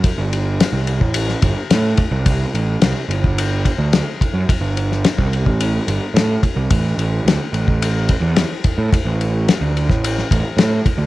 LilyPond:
<<
  \new Staff \with { instrumentName = "Picked electric bass" } { \clef bass \time 4/4 \key a \dorian \tempo 4 = 108 r16 g,,4 c,8 a,,8. g,,16 r16 a,8 r16 c,16~ | c,8 a,,8 c,16 r16 g,,4~ g,,16 d,8 r8 fis,16 | r16 g,,4 c,8 a,,8. g,,16 r16 a,8 r16 c,16 | a,,8 a,,8 d,16 r16 a,,4~ a,,16 e,8 r8 a,16 |
r16 a,,4 d,8 a,,8. a,,16 r16 a,8 r16 d,16 | }
  \new DrumStaff \with { instrumentName = "Drums" } \drummode { \time 4/4 <bd cymr>8 cymr8 <cymr sn>8 cymr16 bd16 cymr16 sn16 <bd cymr>8 <cymr sn>8 <bd cymr>8 | <bd cymr>8 cymr8 <cymr sn>8 cymr16 bd16 cymr8 <bd cymr>8 <cymr sn>8 <bd cymr>8 | <bd cymr>8 cymr16 sn16 <cymr sn>16 bd16 cymr16 bd16 cymr8 cymr8 <cymr sn>8 <bd cymr>8 | <bd cymr>8 cymr8 <cymr sn>8 cymr16 bd16 cymr8 <bd cymr>8 <cymr sn>8 <bd cymr>8 |
<bd cymr>8 cymr8 <cymr sn>8 cymr16 <bd sn>16 cymr16 sn16 <bd cymr>8 <cymr sn>8 <bd cymr>8 | }
>>